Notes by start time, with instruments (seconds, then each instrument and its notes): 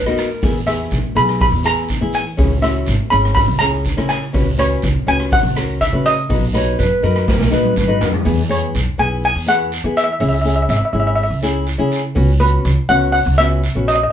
0.06 upright bass D#2, nylon-string guitar B3 D#4 F#4, recorder A#4, cross-stick
0.18 cross-stick, closed hi-hat, short guiro
0.31 closed hi-hat
0.42 upright bass E2, nylon-string guitar B3 E4 G#4, kick, closed hi-hat, long guiro
0.66 nylon-string guitar B3 E4 G#4, steel pan E5, cross-stick, closed hi-hat
0.79 closed hi-hat
0.90 upright bass B1, kick, closed hi-hat, short guiro
1.15 upright bass B1, nylon-string guitar B3 E4 G#4, steel pan B5, closed hi-hat
1.29 cross-stick, closed hi-hat
1.40 steel pan B5, kick, closed hi-hat, long guiro
1.52 upright bass E2
1.64 nylon-string guitar B3 E4 G#4, steel pan A#5, cross-stick, closed hi-hat, short guiro
1.78 closed hi-hat
1.89 kick, closed hi-hat, short guiro
2.01 upright bass E3, nylon-string guitar B3 E4 G#4
2.13 steel pan G#5, closed hi-hat, short guiro
2.27 closed hi-hat
2.37 upright bass C#2, nylon-string guitar C#4 E4 G#4, kick, closed hi-hat, long guiro
2.61 nylon-string guitar C#4 E4 F#4, steel pan E5, cross-stick, closed hi-hat
2.76 closed hi-hat
2.86 upright bass G#1, kick, closed hi-hat, short guiro
3.10 upright bass G#1, nylon-string guitar C#4 E4 G#4, steel pan B5, closed hi-hat
3.25 cross-stick, closed hi-hat
3.35 steel pan B5, kick, closed hi-hat, long guiro
3.48 upright bass C#2
3.59 nylon-string guitar C#4 E4 G#4, steel pan A#5, cross-stick, closed hi-hat, short guiro
3.74 closed hi-hat
3.85 kick, closed hi-hat, short guiro
3.97 upright bass C#3, nylon-string guitar C#4 E4 A#4, cross-stick
4.09 steel pan G#5, cross-stick, closed hi-hat, short guiro
4.23 closed hi-hat
4.33 upright bass C#2, nylon-string guitar C#4 F#4 B4, kick, closed hi-hat, long guiro
4.58 nylon-string guitar C#4 F#4 B4, steel pan C#5, cross-stick, closed hi-hat
4.72 closed hi-hat
4.82 upright bass C#2, kick, closed hi-hat, short guiro
5.07 upright bass C#2, nylon-string guitar C#4 F#4 B4, steel pan G#5, closed hi-hat
5.20 cross-stick, closed hi-hat
5.31 steel pan F#5, kick, closed hi-hat, long guiro
5.43 upright bass C#2
5.56 nylon-string guitar C#4 F#4 A#4, cross-stick, closed hi-hat, short guiro
5.69 closed hi-hat
5.81 steel pan E5, kick, closed hi-hat, short guiro
5.92 upright bass C#3, nylon-string guitar C#4 F#4 B4
6.06 steel pan D#5, closed hi-hat, short guiro
6.18 closed hi-hat
6.29 upright bass B1, nylon-string guitar D#4 F#4 B4, kick, closed hi-hat, long guiro
6.53 nylon-string guitar D#4 F#4 B4, recorder C#5, cross-stick, closed hi-hat
6.67 closed hi-hat
6.79 upright bass F#2, recorder B4, kick, closed hi-hat, short guiro
7.03 upright bass F#2, nylon-string guitar D#4 F#4 B4, recorder A#4, closed hi-hat
7.16 cross-stick, closed hi-hat
7.28 recorder A#4, kick, snare, long guiro
7.39 upright bass B1, snare
7.51 upright bass A#2, nylon-string guitar D#4 F#4 B4, recorder B4, short guiro
7.65 high tom
7.76 upright bass G#2, recorder B4, kick, mid tom, short guiro
7.88 nylon-string guitar D#4 F#4 B4
8.01 upright bass F#2, floor tom, short guiro
8.14 floor tom
8.25 upright bass E2, nylon-string guitar B3 E4 G#4, long guiro
8.49 nylon-string guitar B3 E4 G#4, steel pan C#5
8.75 upright bass B1, short guiro
8.98 upright bass B1, nylon-string guitar B3 E4 G#4, steel pan G#5
9.24 steel pan G#5, long guiro
9.35 upright bass E2
9.46 nylon-string guitar B3 E4 G#4, steel pan F#5, short guiro
9.72 short guiro
9.84 upright bass E3, nylon-string guitar B3 E4 G#4
9.97 steel pan E5, short guiro
10.04 steel pan E5
10.12 steel pan E5
10.20 upright bass C#2, nylon-string guitar C#4 E4 G#4, steel pan E5, long guiro
10.29 steel pan E5
10.34 steel pan E5
10.41 nylon-string guitar C#4 E4, steel pan E5
10.45 nylon-string guitar G#4, steel pan E5
10.56 steel pan E5
10.62 steel pan E5
10.69 upright bass G#1, steel pan E5, short guiro
10.77 steel pan E5
10.85 steel pan E5
10.93 upright bass G#1, nylon-string guitar C#4 E4 G#4, steel pan E5
11.00 steel pan E5
11.07 steel pan E5
11.15 steel pan E5, long guiro
11.23 steel pan E5
11.30 upright bass C#2
11.42 nylon-string guitar C#4 E4 G#4, short guiro
11.67 short guiro
11.78 upright bass C#3, nylon-string guitar C#4 E4 G#4
11.92 short guiro
12.15 upright bass C#2, nylon-string guitar B3 C#4 F#4, long guiro
12.40 nylon-string guitar B3 C#4 F#4, steel pan B4
12.65 upright bass C#2, short guiro
12.89 upright bass C#2, nylon-string guitar B3 C#4 F#4, steel pan F#5
13.12 steel pan F#5, long guiro
13.26 upright bass C#2
13.38 nylon-string guitar B3 C#4 F#4, steel pan E5, short guiro
13.64 short guiro
13.75 upright bass A#1, nylon-string guitar B3 C#4 F#4
13.88 steel pan D#5, short guiro
13.95 steel pan D#5
14.03 steel pan D#5